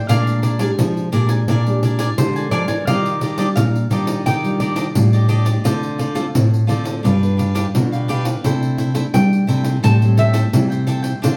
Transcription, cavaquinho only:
0.08 D4 A#4 D5 G#5
0.42 D4 A#4 D5 G#5
0.59 D4 A#4 D5 G#5
1.12 D4 A#4 D5 G#5
1.29 A#4 D5 G#5
1.49 D4 A#4 D5 G#5
1.83 D4 A#4 D5 G#5
1.99 D4 A#4 D5 G#5
2.36 A#4 D5 G#5
2.51 D4 A#4 D5 G#5
2.68 A#4 D5 G#5
2.88 G4 D5 D#5
3.21 D4 G4 D5 D#5
3.38 D4 G4 D5 D#5
3.90 D4 G4 D5 D#5
4.07 G4 D5 D#5
4.26 G4 D5 D#5
4.60 D4 G4 D5 D#5
4.76 D4 G4 D5 D#5
5.13 G4 D5 D#5
5.28 D4 G4 D5 D#5
5.45 G4 D5 D#5
5.64 F4 A4 C5 D5
5.98 F4 A4 C5 D5
6.15 F4 A4 C5 D5
6.67 F4 A4 C5 D5
6.84 A4 C5 D5
7.03 D4 G4 B4 F5
7.37 D4 G4 B4 F5
7.55 D4 G4 B4 F5
7.92 G4 B4 F5
8.08 D4 G4 B4 F5
8.25 G4 B4 F5
8.44 E4 A4 C5 E5
8.78 E4 A4 C5 E5
8.94 E4 A4 C5 E5
9.47 E4 A4 C5 E5
9.64 A4 C5 E5
9.83 A4 C5 E5 G5
10.17 A4 C5 E5 G5
10.33 A4 C5 E5 G5
10.70 C5 E5 G5
10.87 A4 C5 E5 G5
11.02 C5 E5 G5
11.22 D4 A4 C5 F5

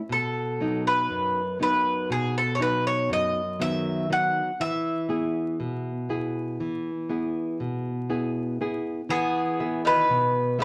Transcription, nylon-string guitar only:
0.09 B2
0.60 F#3 B3 D#4
1.10 F#2
1.59 F#3 B3 D#4
2.10 B2
2.59 F#3 B3 D#4
3.09 F#2
3.59 D#3 F#3 B3
4.10 F#3 B3 D#4
4.60 E3
5.09 B3 E4 G#4
5.60 B2
6.09 B3 E4 G#4
6.60 E3
7.09 B3 E4 G#4
7.60 B2
8.10 B3 E4 G#4
8.61 B3 E4 G#4
9.09 E3
9.60 B3 G#4 E5
10.10 B2
10.59 B3 G#4 E5

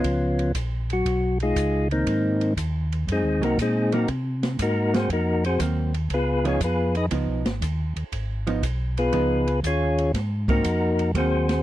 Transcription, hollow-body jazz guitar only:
3.42 F#3 A#3 C4
3.93 F#3 A#3 C4
4.94 F#3 A#3 C4
5.61 F#3 A#3 C4
6.45 F3 B3 D#4
7.11 F3 B3 D#4
8.47 F3 B3 D#4
9.13 F3 B3 D#4
10.49 F#3 A#3 C4
11.15 F#3 A#3 C4

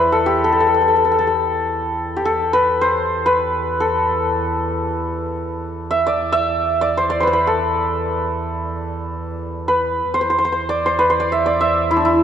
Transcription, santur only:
Already playing: E4 B4 D5 E5
0.12 A4
0.26 G4
0.44 A4
0.52 A4
0.60 A4
0.67 A4
0.74 A4
0.81 A4
0.88 A4
0.96 A4
1.05 A4
1.12 A4
1.19 A4
1.27 A4
2.16 G4
2.25 A4
2.53 B4
2.81 C5
3.26 B4
3.80 A4
5.91 E5
6.07 D5
6.32 E5
6.81 D5
6.97 C5
7.10 D5
7.20 B4 C5
7.27 C5
7.33 B4
7.47 A4
9.68 B4
10.14 C5
10.21 C5
10.30 C5
10.39 C5
10.45 C5
10.52 C5
10.69 D5
10.86 C5
10.99 B4
11.10 C5
11.20 D5
11.32 E5
11.46 D5
11.61 E5
11.91 E4
11.97 D4
12.05 E4

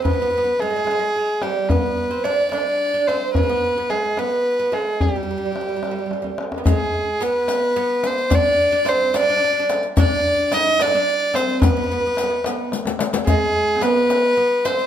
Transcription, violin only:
0.05 B4
0.60 G#4
1.43 G4
1.69 B4
2.23 D5
2.52 D5
3.07 C5
3.34 B4
3.90 G#4
4.18 B4
4.73 G#4
5.01 G#4
5.15 G4
6.68 G#4
7.23 B4
8.06 C5
8.34 D5
8.88 C5
9.15 D5
9.98 D5
10.54 D#5
10.81 D5
11.35 C5
11.63 B4
13.26 G#4
13.82 B4
14.65 C5

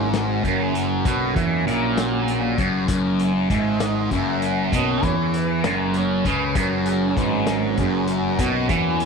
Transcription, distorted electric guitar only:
Already playing: G#2
0.44 F#2
1.06 B2
1.35 E3
1.66 A#2
2.59 F#2
2.88 F#2
3.50 G#2
4.12 F#2
4.72 B2
5.03 E3
5.65 F#2
6.26 C#3
6.56 F#2
7.17 G#2
7.79 F#2
8.39 B2
8.69 E3

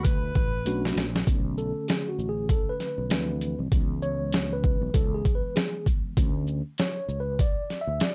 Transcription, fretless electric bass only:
Already playing: D2
0.35 A1
0.66 B1
0.96 A#1
1.27 B1
2.19 A1
2.98 B1
3.10 D2
3.59 C2
3.72 C#2
4.81 B1
4.94 C#2
6.17 D2
7.08 C#2
7.87 D2

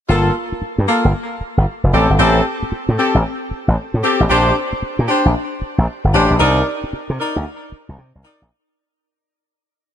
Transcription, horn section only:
0.08 A#3 F4 A4
0.87 A#3 F4 A4
1.92 C4 G4 A4
2.19 C4 G4 A4
2.98 C4 G4 A4
4.03 C4 G4 A4
4.29 D4 G4 C5
5.08 D4 G4 C5
6.13 D4 G4 C5
6.40 D#4 A#4 D5
7.19 D#4 A#4 D5
8.24 D#4 A#4 D5

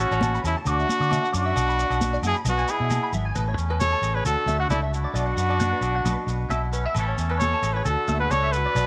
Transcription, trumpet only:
0.00 F#4
0.47 E4
0.69 F#4
1.38 F#4
2.27 G#4
2.49 F#4
2.70 G#4
3.81 C#5
4.15 B4
4.25 A4
4.60 F#4
4.70 E4
4.93 F#4
7.39 C#5
7.73 B4
7.85 A4
8.20 B4
8.31 C#5
8.52 B4

